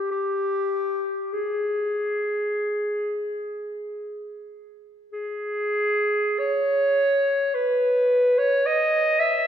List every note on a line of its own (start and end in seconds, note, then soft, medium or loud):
0.11 1.34 G4 medium
1.33 4.45 G#4 soft
5.12 6.40 G#4 medium
6.39 7.56 C#5 medium
7.55 8.40 B4 medium
8.38 8.68 C#5 medium
8.66 9.21 D#5 medium
9.20 9.47 E5 loud